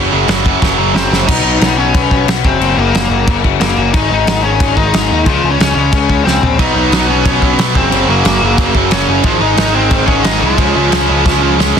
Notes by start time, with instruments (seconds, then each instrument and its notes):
Already playing: overdriven electric guitar F#2 C#3 F#3
0.12 picked electric bass F#1, overdriven electric guitar F#2 C#3 F#3
0.27 picked electric bass F#1, overdriven electric guitar F#2 C#3 F#3, snare, crash
0.45 overdriven electric guitar F#2 C#3 F#3, kick
0.60 picked electric bass F#1, overdriven electric guitar F#2 C#3 F#3, kick, snare
0.77 picked electric bass F#1, overdriven electric guitar F#2 C#3 F#3
0.94 picked electric bass F#1, overdriven electric guitar F#2 C#3 F#3, lead electric guitar C4 C5, snare
1.10 picked electric bass F#1, overdriven electric guitar F#2 C#3 F#3, snare
1.27 picked electric bass B1, overdriven electric guitar B2 F#3 B3, lead electric guitar D#4 D#5, kick, crash
1.43 picked electric bass B1, overdriven electric guitar B2 F#3 B3
1.60 picked electric bass B1, overdriven electric guitar B2 F#3 B3, snare, crash
1.77 overdriven electric guitar B2 F#3 B3, lead electric guitar C#4 C#5
1.94 picked electric bass B1, overdriven electric guitar B2 F#3 B3, kick, crash
2.11 picked electric bass B1, overdriven electric guitar B2 F#3 B3, kick
2.27 picked electric bass B1, overdriven electric guitar B2 F#3 B3, snare, crash
2.44 picked electric bass F#1, overdriven electric guitar F#2 C#3 F#3, lead electric guitar C4 C5, kick
2.59 picked electric bass F#1, overdriven electric guitar F#2 C#3 F#3, crash
2.77 picked electric bass F#1, overdriven electric guitar F#2 C#3 F#3, lead electric guitar A#3 A#4
2.93 picked electric bass F#1, overdriven electric guitar F#2 C#3 F#3, snare, crash
3.09 picked electric bass F#1, overdriven electric guitar F#2 C#3 F#3
3.28 picked electric bass F#1, overdriven electric guitar F#2 C#3 F#3, kick, crash
3.43 overdriven electric guitar F#2 C#3 F#3, kick
3.60 picked electric bass F#1, overdriven electric guitar F#2 C#3 F#3, lead electric guitar A#3 A#4, snare, crash
3.76 picked electric bass F#1, overdriven electric guitar F#2 C#3 F#3
3.93 picked electric bass G#1, overdriven electric guitar G#2 D#3 G#3, lead electric guitar D#4 D#5, kick, crash
4.11 picked electric bass G#1, overdriven electric guitar G#2 D#3 G#3
4.26 picked electric bass G#1, overdriven electric guitar G#2 D#3 G#3, snare, crash
4.43 overdriven electric guitar G#2 D#3 G#3, lead electric guitar C#4 C#5
4.60 picked electric bass G#1, overdriven electric guitar G#2 D#3 G#3, kick, crash
4.77 picked electric bass G#1, overdriven electric guitar G#2 D#3 G#3, lead electric guitar D#4 D#5, kick
4.93 picked electric bass G#1, overdriven electric guitar G#2 D#3 G#3, snare, crash
5.11 picked electric bass D#2, overdriven electric guitar G#2 D#3 G#3
5.26 picked electric bass C#2, overdriven electric guitar C#3 G#3 C#4, lead electric guitar F3 F4, kick, crash
5.43 picked electric bass C#2, overdriven electric guitar C#3 G#3 C#4
5.50 lead electric guitar C#4 C#5
5.59 picked electric bass C#2, overdriven electric guitar C#3 G#3 C#4, snare, crash
5.75 picked electric bass C#2, overdriven electric guitar G#3 C#4, lead electric guitar C#4 C#5
5.79 overdriven electric guitar C#3
5.93 picked electric bass C#2, overdriven electric guitar C#3 G#3 C#4, kick, crash
6.09 overdriven electric guitar C#3 G#3 C#4, kick
6.24 picked electric bass C#2, overdriven electric guitar C#3 G#3 C#4, lead electric guitar C4 C5, snare
6.42 picked electric bass A#1, overdriven electric guitar C#3 G#3 C#4, floor tom
6.59 picked electric bass B1, overdriven electric guitar B2 F#3 B3, lead electric guitar D#4 D#5, kick, crash
6.75 picked electric bass B1, overdriven electric guitar B2 F#3 B3
6.91 picked electric bass B1, overdriven electric guitar B2 F#3 B3, snare, crash
7.08 overdriven electric guitar B2 F#3 B3, lead electric guitar C#4 C#5
7.25 picked electric bass B1, overdriven electric guitar B2 F#3 B3, kick, crash
7.41 picked electric bass B1, overdriven electric guitar B2 F#3 B3, kick
7.58 picked electric bass B1, overdriven electric guitar B2 F#3 B3, snare, crash
7.75 picked electric bass F#1, overdriven electric guitar F#2 C#3 F#3, lead electric guitar C4 C5, kick
7.91 picked electric bass F#1, overdriven electric guitar F#2 C#3 F#3, crash
8.07 picked electric bass F#1, overdriven electric guitar F#2 C#3 F#3, lead electric guitar A#3 A#4
8.24 picked electric bass F#1, overdriven electric guitar F#2 C#3 F#3, snare, crash
8.42 picked electric bass F#1, overdriven electric guitar F#2 C#3 F#3
8.58 picked electric bass F#1, overdriven electric guitar F#2 C#3 F#3, kick, crash
8.75 overdriven electric guitar F#2 C#3 F#3, kick
8.91 picked electric bass F#1, overdriven electric guitar F#2 C#3 F#3, lead electric guitar C#4 C#5, snare, crash
9.08 picked electric bass F#1, overdriven electric guitar F#2 C#3 F#3
9.23 picked electric bass G#1, overdriven electric guitar G#2 D#3 G#3, lead electric guitar F3 F4, kick, crash
9.40 picked electric bass G#1, overdriven electric guitar G#2 D#3 G#3, lead electric guitar D#4 D#5
9.57 picked electric bass G#1, overdriven electric guitar G#2 D#3 G#3, snare, crash
9.75 overdriven electric guitar G#2 D#3 G#3, lead electric guitar C4 C5
9.91 picked electric bass G#1, overdriven electric guitar G#2 D#3 G#3, kick, crash
10.06 picked electric bass G#1, overdriven electric guitar G#2 D#3 G#3, lead electric guitar C#4 C#5, kick
10.23 picked electric bass G#1, overdriven electric guitar G#2 D#3 G#3, lead electric guitar D#4 D#5, snare, crash
10.40 picked electric bass C2, overdriven electric guitar G#2 D#3 G#3, lead electric guitar F3 F4
10.57 picked electric bass C#2, overdriven electric guitar C#3 G#3 C#4, kick, crash
10.75 picked electric bass C#2, overdriven electric guitar C#3 G#3 C#4
10.92 picked electric bass C#2, overdriven electric guitar C#3 G#3 C#4, snare, crash
11.08 picked electric bass C#2, overdriven electric guitar C#3 G#3 C#4
11.26 picked electric bass C#2, overdriven electric guitar C#3 G#3 C#4, kick, snare
11.42 overdriven electric guitar C#3 G#3 C#4
11.59 picked electric bass C#2, overdriven electric guitar C#3 G#3 C#4, snare
11.76 picked electric bass A#1, overdriven electric guitar C#3 G#3 C#4